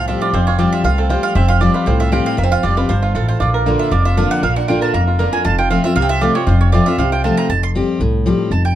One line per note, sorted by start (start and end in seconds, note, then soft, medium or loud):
0.00 0.13 C2 medium
0.00 0.31 A2 medium
0.00 1.23 F3 medium
0.00 0.34 C4 medium
0.08 0.32 F3 medium
0.08 0.32 G3 medium
0.08 0.33 C4 medium
0.08 0.22 F4 medium
0.08 0.33 G4 medium
0.08 0.21 E5 medium
0.21 0.48 F4 medium
0.21 0.33 D5 loud
0.33 0.64 F1 medium
0.33 0.82 F2 medium
0.33 0.59 C4 medium
0.33 0.46 C5 medium
0.47 0.73 F4 medium
0.47 0.58 C#5 medium
0.58 0.83 F3 loud
0.58 0.83 G3 medium
0.58 0.98 C4 medium
0.58 0.84 C4 medium
0.58 0.84 G4 medium
0.58 0.72 D5 medium
0.72 0.84 F4 medium
0.72 0.84 E5 medium
0.84 1.15 C2 medium
0.84 1.33 A2 medium
0.84 1.10 F4 medium
0.84 0.98 F5 loud
0.98 1.36 C4 medium
0.98 1.10 A4 medium
1.09 1.34 F3 medium
1.09 1.34 G3 medium
1.09 1.35 C4 medium
1.09 1.24 F4 medium
1.09 1.35 G4 medium
1.09 1.23 C5 medium
1.23 1.49 F4 medium
1.23 1.35 F5 loud
1.35 1.67 F1 medium
1.35 1.85 F2 medium
1.35 1.72 C4 medium
1.35 1.48 E5 medium
1.48 1.62 F4 medium
1.48 1.60 F5 loud
1.61 1.86 F3 medium
1.61 1.86 G3 medium
1.61 1.86 C4 medium
1.61 1.75 F4 medium
1.61 1.86 G4 loud
1.61 1.74 D5 medium
1.74 2.00 F4 medium
1.74 1.86 B4 medium
1.86 2.18 C2 medium
1.86 2.36 A2 loud
1.86 2.23 C4 medium
1.86 2.00 C5 medium
2.00 2.12 F4 medium
2.00 2.12 E5 medium
2.12 2.37 F3 medium
2.12 2.37 G3 medium
2.12 2.37 C4 medium
2.12 2.51 F4 medium
2.12 2.37 G4 loud
2.12 2.26 G5 medium
2.26 2.38 C4 medium
2.26 2.38 F5 loud
2.37 2.54 F1 medium
2.37 2.86 F2 medium
2.37 2.43 A#3 medium
2.37 2.51 E5 medium
2.43 2.64 C4 medium
2.51 2.63 F4 medium
2.51 2.63 F5 loud
2.63 2.86 F1 medium
2.63 2.76 F3 medium
2.63 2.77 G3 medium
2.63 2.77 C4 medium
2.63 2.77 F4 medium
2.63 2.76 G4 loud
2.63 2.77 D5 medium
2.77 2.90 C4 soft
2.77 3.02 F4 medium
2.77 2.89 G4 medium
2.77 2.89 B4 medium
2.89 3.11 G1 medium
2.89 3.14 G2 medium
2.89 4.29 F3 medium
2.89 3.02 C5 medium
3.02 3.14 F4 medium
3.15 3.37 A1 medium
3.15 3.40 A2 medium
3.15 3.28 F4 medium
3.15 3.28 A4 medium
3.28 3.40 F4 soft
3.28 3.40 C5 medium
3.40 3.71 A#1 medium
3.40 3.90 A#2 medium
3.40 3.79 F4 medium
3.40 3.48 D5 medium
3.54 3.89 A#4 medium
3.66 3.91 D3 medium
3.66 3.91 A#3 medium
3.66 3.91 D4 medium
3.66 3.91 F4 medium
3.79 4.05 F4 medium
3.79 3.91 E5 medium
3.92 4.23 F1 medium
3.92 4.41 F2 loud
3.92 4.28 A#3 medium
3.92 4.05 D5 medium
4.05 4.67 F4 medium
4.05 4.17 E5 loud
4.17 4.42 D3 medium
4.17 4.42 A#3 medium
4.17 4.54 D4 medium
4.17 4.42 D4 loud
4.17 4.42 F4 loud
4.17 4.31 F5 medium
4.31 4.42 A#3 medium
4.31 4.43 F#5 loud
4.43 4.74 A#1 medium
4.43 4.92 A#2 medium
4.43 4.79 A#3 medium
4.43 4.56 F5 medium
4.56 4.92 D4 medium
4.56 4.68 F#5 medium
4.68 4.93 D3 medium
4.68 4.93 A#3 medium
4.68 4.93 D4 medium
4.68 5.07 F4 medium
4.68 4.94 F4 medium
4.68 4.82 G5 medium
4.81 5.17 A#4 medium
4.81 4.94 A5 medium
4.94 5.25 F1 medium
4.94 5.43 F2 medium
4.94 5.30 A#3 medium
4.94 5.02 A#5 medium
5.07 5.45 F4 medium
5.19 5.32 D3 medium
5.19 5.32 A#3 medium
5.19 5.33 D4 medium
5.19 5.31 F4 loud
5.19 5.45 A#4 medium
5.33 5.45 A#3 medium
5.33 5.45 D4 medium
5.33 5.44 F4 medium
5.33 5.44 G#5 loud
5.45 5.76 F1 medium
5.45 5.94 F2 medium
5.45 5.58 F4 medium
5.45 5.58 A5 loud
5.58 5.84 F4 medium
5.58 5.70 G5 loud
5.70 5.84 F3 medium
5.70 5.84 A3 medium
5.70 5.96 C4 medium
5.70 5.84 C4 medium
5.70 5.83 F4 medium
5.70 5.84 F5 loud
5.84 5.97 C4 medium
5.84 5.96 F4 medium
5.84 6.09 F4 medium
5.84 5.95 E5 loud
5.96 6.27 C2 medium
5.96 6.45 C3 medium
5.96 6.02 A#3 medium
5.96 6.09 F5 loud
6.02 6.22 C4 medium
6.09 6.21 F4 medium
6.09 6.21 E5 loud
6.21 6.35 F3 medium
6.21 6.35 A3 medium
6.21 6.35 C4 loud
6.21 6.46 F4 medium
6.21 6.34 F4 loud
6.21 6.35 D5 medium
6.35 6.70 C4 medium
6.35 6.48 C4 medium
6.35 6.47 F4 medium
6.35 6.46 C#5 loud
6.47 6.78 F1 loud
6.47 6.97 F2 medium
6.47 6.84 F4 medium
6.47 6.60 C5 medium
6.61 6.72 C#5 medium
6.72 6.86 F3 medium
6.72 6.87 A3 medium
6.72 6.97 C4 medium
6.72 6.87 C4 loud
6.72 6.86 F4 loud
6.72 6.86 D5 medium
6.86 6.99 C4 medium
6.86 7.11 F4 medium
6.86 6.99 F4 medium
6.86 6.98 E5 loud
6.98 7.29 C2 medium
6.98 7.48 C3 medium
6.98 7.35 C4 medium
6.98 7.12 F5 medium
7.12 7.23 F4 medium
7.12 7.24 G5 loud
7.24 7.49 F3 medium
7.24 7.49 A3 medium
7.24 7.49 C4 medium
7.24 7.50 F4 medium
7.24 7.50 F4 loud
7.24 7.37 A5 medium
7.37 7.50 C4 medium
7.37 7.49 A#5 loud
7.49 7.81 F1 medium
7.49 7.98 F2 medium
7.49 7.63 A5 loud
7.63 7.70 C6 loud
7.75 7.99 F3 medium
7.75 8.00 G3 medium
7.75 8.00 C4 medium
7.75 8.00 G4 medium
8.00 8.31 C2 medium
8.00 8.49 A2 loud
8.26 8.50 F3 medium
8.26 8.50 G3 medium
8.26 8.51 C4 loud
8.26 8.51 G4 loud
8.51 8.75 F1 medium
8.51 8.75 F2 medium
8.51 8.65 A5 medium
8.65 8.75 G5 medium